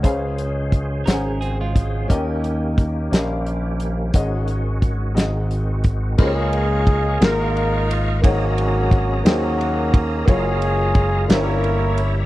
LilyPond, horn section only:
\new Staff \with { instrumentName = "Horn section" } { \time 6/8 \key des \major \tempo 4. = 59 << { r2. | r2. | r2. | <aes aes'>4. <bes bes'>4 r8 |
<ges ges'>4. <ges ges'>4 r8 | <aes aes'>4. <bes bes'>4 r8 | } \\ { r2. | r2. | r2. | <ees' f'>4. <ees' f'>4. |
<bes des'>4. <bes des'>4. | <des' f'>4. <des' e'>4. | } >> }